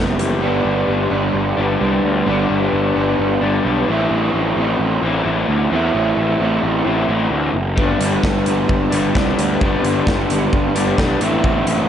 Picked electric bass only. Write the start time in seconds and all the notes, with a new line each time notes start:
Already playing: F#1
0.42 G1
0.65 G1
0.88 G1
1.11 G1
1.34 G1
1.58 G1
1.81 C2
2.04 D2
2.27 G1
2.50 G1
2.73 G1
2.96 G1
3.19 G1
3.41 G1
3.65 B1
3.88 A1
4.11 A1
4.34 A1
4.57 A1
4.79 A1
5.02 A1
5.26 A1
5.49 D2
5.72 E2
5.95 A1
6.17 A1
6.40 A1
6.63 A1
6.86 A1
7.09 A1
7.31 D2
7.54 F#1
7.78 G1
7.99 G1
8.23 G1
8.46 G1
8.69 G1
8.92 G1
9.15 C2
9.38 D2
9.62 G1
9.83 G1
10.07 G1
10.30 G1
10.53 G1
10.75 G1
10.98 B1
11.21 A1
11.44 A1
11.66 A1